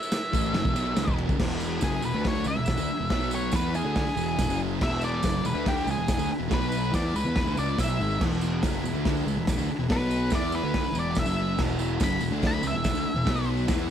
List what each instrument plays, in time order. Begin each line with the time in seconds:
Already playing: transistor combo organ E4 G#4 B4, lead electric guitar E5
0.03 tambourine
0.12 snare, ride, tambourine
0.24 tambourine
0.33 picked electric bass A1, distorted electric guitar A2 E3 A3, kick, ride, tambourine
0.46 tambourine
0.54 picked electric bass F#1, distorted electric guitar F#2 C#3, snare, ride, tambourine
0.63 picked electric bass E1, distorted electric guitar E2 B2, kick, tambourine
0.75 picked electric bass B1, distorted electric guitar B2 F#3 B3, ride, tambourine
0.96 picked electric bass C#2, distorted electric guitar C#3 G#3, snare, ride, tambourine
1.07 picked electric bass E1, distorted electric guitar E2 B2 E3, kick, tambourine
1.18 ride
1.27 picked electric bass F#1, distorted electric guitar F#2 C#3, kick, tambourine
1.38 picked electric bass E1, distorted electric guitar E2 B2 E3, transistor combo organ E4 G#4 B4, kick, snare, crash
1.50 tambourine
1.60 tambourine
1.81 picked electric bass F#1, distorted electric guitar F#2 C#3 F#3, lead electric guitar G#4, kick, snare, open hi-hat, tambourine
1.92 tambourine
2.02 picked electric bass E1, distorted electric guitar E2 B2, lead electric guitar B4, tambourine
2.14 picked electric bass D2, distorted electric guitar D3 A3 D4
2.24 lead electric guitar C#5, kick, snare, open hi-hat, tambourine
2.35 tambourine
2.44 picked electric bass C#2, distorted electric guitar C#3 G#3, lead electric guitar E5, tambourine
2.56 picked electric bass E1, distorted electric guitar E2 B2
2.66 kick, snare, open hi-hat, tambourine
2.77 picked electric bass D2, distorted electric guitar D3 A3, tambourine
2.88 muted distorted electric guitar stroke, muted picked electric bass stroke
3.00 picked electric bass E1, distorted electric guitar E2 B2
3.09 picked electric bass B1, distorted electric guitar B2 F#3 B3, transistor combo organ B3 F#4 B4, kick, snare, open hi-hat
3.21 tambourine
3.31 lead electric guitar C#5, tambourine
3.52 picked electric bass E2, distorted electric guitar E3 B3 E4, transistor combo organ E4 G#4, kick, snare, open hi-hat, tambourine
3.56 lead electric guitar B4, transistor combo organ B4
3.63 tambourine
3.74 lead electric guitar G#4, tambourine
3.85 picked electric bass D2, distorted electric guitar D3 A3 D4
3.96 kick, snare, open hi-hat, tambourine
4.06 muted distorted electric guitar stroke, muted picked electric bass stroke, tambourine
4.16 picked electric bass E1, distorted electric guitar E2 B2 E3, tambourine
4.37 picked electric bass E1, distorted electric guitar E2 B2, kick, snare, open hi-hat, tambourine
4.47 picked electric bass F#1, distorted electric guitar F#2 C#3 F#3, tambourine
4.79 picked electric bass E1, distorted electric guitar E2 B2 E3, lead electric guitar E5, kick, snare, crash
5.01 lead electric guitar D5, tambourine
5.22 picked electric bass F#1, distorted electric guitar F#2 C#3 F#3, kick, snare, open hi-hat, tambourine
5.34 tambourine
5.44 picked electric bass E1, distorted electric guitar E2 B2, lead electric guitar B4, tambourine
5.54 picked electric bass D2, distorted electric guitar D3 A3 D4
5.66 lead electric guitar G4, kick, snare, open hi-hat, tambourine
5.77 tambourine
5.86 picked electric bass C#2, distorted electric guitar C#3 G#3, tambourine
5.91 lead electric guitar G#4
5.96 picked electric bass E1, distorted electric guitar E2 B2
6.08 kick, snare, open hi-hat, tambourine
6.17 picked electric bass D2, distorted electric guitar D3 A3, tambourine
6.29 muted distorted electric guitar stroke, muted picked electric bass stroke
6.38 picked electric bass E1, distorted electric guitar E2 B2
6.48 picked electric bass B1, distorted electric guitar B2 F#3 B3, transistor combo organ B3 F#4, kick, snare, open hi-hat, tambourine
6.53 transistor combo organ B4, lead electric guitar B4
6.62 tambourine
6.72 tambourine
6.84 tambourine
6.91 picked electric bass E2, distorted electric guitar E3 B3 E4, transistor combo organ E4, lead electric guitar D5, kick, snare, open hi-hat, tambourine
6.95 transistor combo organ G#4 B4
7.13 picked electric bass C#2, distorted electric guitar C#3 G#3, lead electric guitar B4, tambourine
7.24 picked electric bass E2, distorted electric guitar E3 B3, tambourine
7.35 picked electric bass E1, distorted electric guitar E2 B2, kick, snare, open hi-hat, tambourine
7.45 picked electric bass D2, distorted electric guitar D3 A3, tambourine
7.56 picked electric bass C#2, distorted electric guitar C#3 G#3 C#4, lead electric guitar D5, tambourine
7.68 tambourine
7.77 picked electric bass B1, distorted electric guitar B2 F#3 B3, lead electric guitar E5, kick, snare, open hi-hat, tambourine
7.89 tambourine
7.99 picked electric bass G#1, distorted electric guitar G#2 D#3 G#3, tambourine
8.11 tambourine
8.20 picked electric bass E1, distorted electric guitar E2 B2 E3, kick, snare, crash
8.32 tambourine
8.41 tambourine
8.63 picked electric bass F#1, distorted electric guitar F#2 C#3 F#3, kick, snare, open hi-hat, tambourine
8.74 tambourine
8.84 picked electric bass E1, distorted electric guitar E2 B2, tambourine
8.93 picked electric bass D2, distorted electric guitar D3 A3 D4
9.05 kick, snare, open hi-hat, tambourine
9.17 tambourine
9.24 picked electric bass C#2, distorted electric guitar C#3 G#3, tambourine
9.35 picked electric bass E1, distorted electric guitar E2 B2
9.47 kick, snare, open hi-hat, tambourine
9.57 picked electric bass D2, distorted electric guitar D3 A3, tambourine
9.68 muted distorted electric guitar stroke, muted picked electric bass stroke
9.79 picked electric bass E1, distorted electric guitar E2 B2
9.88 picked electric bass B1, distorted electric guitar B2 F#3 B3, transistor combo organ B3 F#4 B4, lead electric guitar B4, kick, snare, open hi-hat
10.00 tambourine
10.11 tambourine
10.30 picked electric bass E2, distorted electric guitar E3 B3 E4, transistor combo organ E4 G#4 B4, kick, snare, open hi-hat, tambourine
10.35 lead electric guitar D5
10.41 tambourine
10.52 lead electric guitar B4, tambourine
10.63 picked electric bass D2, distorted electric guitar D3 A3 D4
10.74 kick, snare, open hi-hat, tambourine
10.84 muted distorted electric guitar stroke, muted picked electric bass stroke, tambourine
10.93 picked electric bass E1, distorted electric guitar E2 B2 E3, tambourine
10.99 lead electric guitar D5
11.15 picked electric bass E1, distorted electric guitar E2 B2, kick, snare, open hi-hat, tambourine
11.19 lead electric guitar E5
11.25 picked electric bass F#1, distorted electric guitar F#2 C#3 F#3, tambourine
11.57 picked electric bass E1, distorted electric guitar E2 B2 E3, kick, snare, crash
11.67 tambourine
11.79 tambourine
12.00 picked electric bass F#1, distorted electric guitar F#2 C#3 F#3, lead electric guitar B5, kick, snare, open hi-hat, tambourine
12.11 tambourine
12.20 picked electric bass E1, distorted electric guitar E2 B2, tambourine
12.31 picked electric bass D2, distorted electric guitar D3 A3 D4
12.42 kick, snare, open hi-hat, tambourine
12.47 lead electric guitar B5
12.53 tambourine
12.62 picked electric bass C#2, distorted electric guitar C#3 G#3, tambourine
12.67 lead electric guitar E5
12.73 picked electric bass E1, distorted electric guitar E2 B2
12.84 kick, snare, open hi-hat, tambourine
12.94 picked electric bass D2, distorted electric guitar D3 A3, tambourine
13.05 muted distorted electric guitar stroke, muted picked electric bass stroke
13.14 picked electric bass E1, distorted electric guitar E2 B2
13.25 picked electric bass B1, distorted electric guitar B2 F#3 B3, transistor combo organ B3 F#4 B4, kick, snare, open hi-hat, tambourine
13.36 tambourine
13.57 tambourine
13.67 picked electric bass E2, distorted electric guitar E3 B3 E4, transistor combo organ E4 G#4 B4, kick, snare, open hi-hat, tambourine
13.79 tambourine